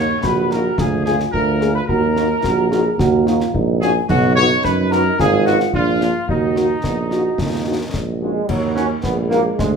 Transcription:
Already playing: tuba D#2, euphonium D#4, trumpet section C#5, flute section C#6
0.22 tuba A#1, euphonium F#4, trumpet section B4, flute section B5, concert bass drum, snare
0.50 french horn section A#3 D#4 F#4, trumpet section A#4, flute section A#5, snare
0.78 tuba D2, euphonium F4, trumpet section G#4, flute section G#5, concert bass drum, snare
1.04 french horn section A#3 F4 G#4, trumpet section G#4, flute section G#5, snare
1.20 snare
1.32 tuba D2, euphonium F4, trumpet section A#4, flute section A#5, concert bass drum
1.61 french horn section A#3 F4 G#4, snare
1.75 trumpet section B4, flute section B5
1.87 tuba D#2, euphonium F#4, trumpet section A#4, flute section A#5, concert bass drum
2.16 french horn section A#3 D#4 F#4, euphonium D#4, snare
2.43 tuba A#1, euphonium F#4, concert bass drum, snare
2.71 french horn section A#3 D#4 F#4, euphonium G#4, snare
2.97 tuba D#2, euphonium F#4, concert bass drum, snare
3.26 french horn section A#3 D#4 F#4, euphonium F4, snare
3.40 snare
3.53 tuba A#1, euphonium D#4, concert bass drum
3.81 french horn section A#3 D#4 F#4, euphonium C#4, trumpet section G#4, flute section G#5, snare
4.08 tuba B1, euphonium D#4, trumpet section F#4, flute section F#5, concert bass drum, crash
4.35 french horn section B3 D#4 F#4, trumpet section C#5, flute section C#6, snare
4.63 tuba F#2, trumpet section B4, flute section B5, concert bass drum, snare
4.91 french horn section B3 D#4 F#4, trumpet section A#4, flute section A#5, snare
5.19 tuba G#1, euphonium F4, trumpet section G#4, flute section G#5, concert bass drum, snare
5.46 french horn section B3 D#4 F4, trumpet section F#4, flute section F#5, snare
5.60 snare
5.73 tuba A#1, euphonium D4, trumpet section F4, flute section F5, concert bass drum
6.01 french horn section A#3 D4 F4, snare
6.28 tuba D#2, trumpet section D#4, euphonium F#4, flute section D#5, concert bass drum
6.56 french horn section A#3 D#4 F#4, snare
6.84 tuba A#1, euphonium B3, concert bass drum, snare
7.11 french horn section A#3 D#4 F#4, euphonium F#4, snare
7.38 tuba D#2, euphonium F4, concert bass drum, snare
7.66 french horn section A#3 D#4 F#4, euphonium D#4
7.94 tuba A#1, euphonium C#4, concert bass drum, snare
8.21 trombone section G#3, french horn section A#3 D#4 F#4, euphonium C#4
8.48 tuba D#2, trombone section F#3, concert bass drum, crash
8.75 trombone section C#4, french horn section D#4 F#4 A#4, trumpet section F#5, snare
9.02 tuba A#1, euphonium G#3, trombone section B3, concert bass drum, snare
9.28 trombone section A#3, french horn section D#4 F#4 A#4, trumpet section F#5, snare
9.58 tuba D2, trombone section G#3, concert bass drum, snare

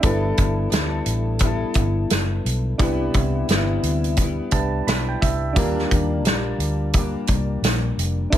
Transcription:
0.01 fingered electric bass G1, steel-string acoustic guitar G3 B3, synth keys D4 E4 A4, kick, closed hi-hat
0.05 steel-string acoustic guitar E4 A4, synth keys B4
0.38 fingered electric bass G1, kick, closed hi-hat
0.70 fingered electric bass D2, steel-string acoustic guitar G3 B3 E4 A4, snare, closed hi-hat
1.06 fingered electric bass A1, closed hi-hat
1.39 steel-string acoustic guitar G3 B3, kick, closed hi-hat
1.44 steel-string acoustic guitar E4 A4
1.74 fingered electric bass G1, kick, closed hi-hat
2.10 fingered electric bass F#1, snare, closed hi-hat
2.45 fingered electric bass B1, closed hi-hat
2.78 fingered electric bass C2, steel-string acoustic guitar C3 G3 B3 E4, synth keys D4 E4 G4, kick, closed hi-hat
2.84 synth keys B4
3.14 fingered electric bass C2, kick, closed hi-hat
3.48 fingered electric bass G1, steel-string acoustic guitar C3 G3 B3 E4, snare, closed hi-hat
3.83 fingered electric bass D2, closed hi-hat
4.04 closed hi-hat
4.17 steel-string acoustic guitar G3, kick, closed hi-hat
4.21 steel-string acoustic guitar B3 E4
4.51 fingered electric bass C2, synth keys D4 E4 G4 B4 A5, kick, closed hi-hat
4.87 fingered electric bass B1, synth keys B5, snare, closed hi-hat
5.09 synth keys G5
5.22 fingered electric bass C2, synth keys E5, kick, closed hi-hat
5.53 fingered electric bass D#2, steel-string acoustic guitar D#3 G3 A#3, synth keys D4 F4 G4, kick, closed hi-hat
5.58 steel-string acoustic guitar D4, synth keys A#4
5.79 snare
5.91 fingered electric bass D#2, kick, closed hi-hat
6.24 fingered electric bass A#1, steel-string acoustic guitar G3 A#3 D4, snare, closed hi-hat
6.58 fingered electric bass D2, closed hi-hat
6.93 steel-string acoustic guitar G3 A#3, kick, closed hi-hat
6.98 steel-string acoustic guitar D4
7.27 fingered electric bass C2, kick, closed hi-hat
7.62 fingered electric bass A#1, snare, closed hi-hat
7.97 fingered electric bass F1, closed hi-hat
8.30 fingered electric bass G1, steel-string acoustic guitar G2 E3, synth keys D4 E4 A4, kick, closed hi-hat

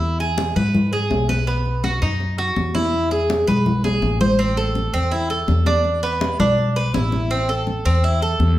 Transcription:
Already playing: upright bass E2, cuban tres E4
0.02 high conga
0.20 cuban tres G#4, high conga
0.38 high conga
0.56 upright bass G#2, cuban tres B4, high conga, low conga
0.74 high conga, low conga
0.93 cuban tres G#4, high conga
1.10 upright bass B1, high conga
1.29 cuban tres B4, high conga
1.47 cuban tres B3, high conga
1.66 high conga
1.84 cuban tres F#4, high conga
2.02 upright bass F#2, cuban tres D#4
2.20 high conga
2.38 cuban tres F#4, high conga
2.56 upright bass E2, high conga
2.75 cuban tres E4, high conga
2.94 high conga
3.11 cuban tres G#4, high conga
3.30 high conga
3.47 upright bass B1, cuban tres B4, high conga, low conga
3.66 high conga, low conga
3.84 cuban tres G#4, high conga
4.02 upright bass A1, high conga
4.21 cuban tres C5, low conga
4.39 cuban tres C4, high conga
4.57 cuban tres A4, high conga
4.75 high conga
4.93 upright bass E2, cuban tres C4
5.11 cuban tres E4, high conga
5.30 cuban tres A4, high conga
5.48 upright bass E2, high conga
5.66 cuban tres D4, high conga
5.84 high conga
6.03 cuban tres B3, high conga
6.21 high conga
6.39 upright bass B1, cuban tres D4, high conga, low conga
6.58 high conga
6.76 cuban tres B4, high conga
6.94 upright bass A1, cuban tres E4, high conga
7.12 high conga
7.30 cuban tres C4, high conga
7.49 cuban tres A4, high conga
7.67 high conga
7.85 upright bass E2, cuban tres C4
8.04 cuban tres E4, high conga
8.22 cuban tres A4, high conga
8.39 upright bass E2, high conga

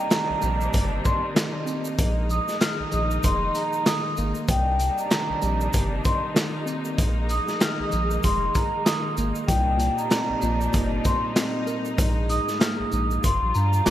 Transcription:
Already playing: tine electric piano C2, string section C3 G3 A#3 D4 D#4, vibraphone A#5
0.10 tine electric piano D#3, snare, clap, closed hi-hat, shaker
0.30 sub bass A#1
0.42 sub bass A#1, tine electric piano C2, shaker
0.61 shaker
0.73 sub bass G1, tine electric piano C2, kick, closed hi-hat, shaker
1.05 vibraphone C6, kick, shaker
1.35 tine electric piano D#3, snare, clap, closed hi-hat, shaker
1.66 tine electric piano C4, shaker
1.85 shaker
1.97 tine electric piano A#1, sub bass A#1, string section G#3 D#4, kick, closed hi-hat, shaker
2.29 tine electric piano A#1, vibraphone D#6, shaker
2.48 snare, shaker
2.61 tine electric piano D#3, vibraphone F6, snare, clap, closed hi-hat, shaker
2.78 sub bass A#1, vibraphone D#6
2.90 tine electric piano A#1, sub bass A#1, vibraphone D#6, shaker
3.11 shaker
3.21 sub bass F1, tine electric piano A#1, vibraphone C6, kick, closed hi-hat, shaker
3.55 vibraphone A#5, closed hi-hat, shaker
3.73 shaker
3.86 tine electric piano D#3, vibraphone D#6, snare, clap, closed hi-hat, shaker
4.17 sub bass G#1, tine electric piano A#3, shaker
4.35 shaker
4.48 tine electric piano C2, sub bass C2, string section C3 G3 A#3 D4 D#4, vibraphone G5, kick, closed hi-hat, shaker
4.79 tine electric piano C2, closed hi-hat, shaker
4.98 vibraphone A#5, shaker
5.10 tine electric piano D#3, snare, clap, closed hi-hat, shaker
5.30 sub bass A#1
5.42 sub bass A#1, tine electric piano C2, shaker
5.61 shaker
5.73 sub bass G1, tine electric piano C2, kick, closed hi-hat, shaker
6.04 vibraphone C6, kick, closed hi-hat, shaker
6.35 tine electric piano D#3, snare, clap, closed hi-hat, shaker
6.66 tine electric piano C4, shaker
6.85 shaker
6.97 tine electric piano A#1, sub bass A#1, string section G#3, kick, closed hi-hat, shaker
7.29 tine electric piano A#1, vibraphone D#6, closed hi-hat, shaker
7.48 snare, shaker
7.60 tine electric piano D#3, vibraphone F6, snare, clap, closed hi-hat, shaker
7.80 sub bass A#1, vibraphone D#6
7.89 tine electric piano A#1, sub bass A#1, vibraphone D#6, shaker
8.11 shaker
8.21 sub bass F1, tine electric piano A#1, vibraphone C6, kick, closed hi-hat, shaker
8.55 vibraphone A#5, kick, closed hi-hat, shaker
8.85 tine electric piano D#3, vibraphone D#6, snare, clap, closed hi-hat, shaker
9.17 sub bass G#1, tine electric piano A#3, shaker
9.35 shaker
9.47 sub bass C2, tine electric piano A#2, string section C3 G3 D4 D#4, vibraphone G5, kick, closed hi-hat, shaker
9.77 tine electric piano A#2, closed hi-hat, shaker
9.98 vibraphone A#5, shaker
10.10 tine electric piano C4, snare, clap, closed hi-hat, shaker
10.29 sub bass A#1
10.42 sub bass A#1, tine electric piano A#2, shaker
10.61 shaker
10.72 sub bass G1, tine electric piano A#2, kick, closed hi-hat, shaker
11.05 vibraphone C6, kick, closed hi-hat, shaker
11.36 tine electric piano C4, snare, clap, closed hi-hat, shaker
11.67 tine electric piano A#4, shaker
11.85 shaker
11.97 sub bass A#1, tine electric piano G#2, string section G#3, kick, closed hi-hat, shaker
12.29 tine electric piano G#2, vibraphone D#6, closed hi-hat, shaker
12.48 snare, shaker
12.59 tine electric piano A#3, vibraphone F6, snare, clap, closed hi-hat, shaker
12.78 sub bass A#1, vibraphone D#6
12.92 sub bass A#1, tine electric piano G#2, vibraphone D#6, shaker
13.11 shaker
13.23 sub bass G1, tine electric piano G2, string section G3 F4, vibraphone C6, kick, closed hi-hat, shaker
13.42 sub bass A#1
13.54 sub bass G2, vibraphone A#5, shaker
13.73 shaker
13.85 sub bass G1, tine electric piano A#3, vibraphone D6, snare, clap, closed hi-hat, shaker

